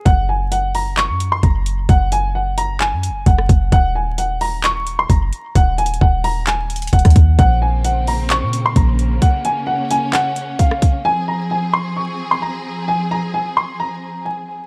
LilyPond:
<<
  \new Staff \with { instrumentName = "Grand piano" } { \time 4/4 \key ges \lydian \tempo 4 = 131 ges''8 aes''8 ges''8 bes''8 des'''8. c'''16 bes''4 | ges''8 aes''8 ges''8 bes''8 aes''4 ges''4 | ges''8 aes''8 ges''8 bes''8 des'''8. c'''16 bes''4 | ges''8 aes''8 ges''8 bes''8 aes''4 ges''4 |
ges''8 aes''8 ges''8 bes''8 des'''8. c'''16 bes''4 | ges''8 aes''8 ges''8 aes''8 ges''4 f''4 | aes''8 bes''8 aes''8 c'''8 des'''8. c'''16 bes''4 | aes''8 bes''8 aes''8 c'''8 bes''4 aes''4 | }
  \new Staff \with { instrumentName = "String section" } { \time 4/4 \key ges \lydian << { r1 | r1 | r1 | r1 |
c'1 | des'1 | aes'1~ | aes'1 | } \\ { r1 | r1 | r1 | r1 |
<des bes>1~ | <des bes>1 | <f c'>1~ | <f c'>1 | } >> }
  \new Staff \with { instrumentName = "808-style bass" } { \clef bass \time 4/4 \key ges \lydian ges,,2~ ges,,16 ges,8. ges,,4 | ges,,2~ ges,,16 ges,16. ges,,16. ges,,8 ges,,8 | ees,,2. ges,,8 r8 | ees,,4 ees,,2 ees,,16 ees,16 ees,8 |
bes,,2~ bes,,16 bes,8. bes,,4 | r1 | r1 | r1 | }
  \new DrumStaff \with { instrumentName = "Drums" } \drummode { \time 4/4 <hh bd>4 hh8 hho8 <hc hh>8 hh8 <hh bd>8 hh8 | <hh bd>8 hh8 r8 hh8 <hc hh>8 hh8 <hh bd>16 ss16 <hh bd>8 | <hh bd>4 hh8 hho8 <hc hh>8 hh8 <hh bd>8 hh8 | \tuplet 3/2 { <hh bd>16 r16 r16 hh16 hh16 hh16 } bd8 hho8 <hc hh>8 hh32 hh32 hh32 hh32 <hh bd>32 hh32 <hh bd ss>32 hh32 <hh bd>8 |
<hh bd>4 hh8 hho8 <hc hh>8 hh8 <hh bd>8 hh8 | <hh bd>8 hh8 r8 hh8 <hc hh>8 hh8 <hh bd>16 ss16 <hh bd>8 | r4 r4 r4 r4 | r4 r4 r4 r4 | }
>>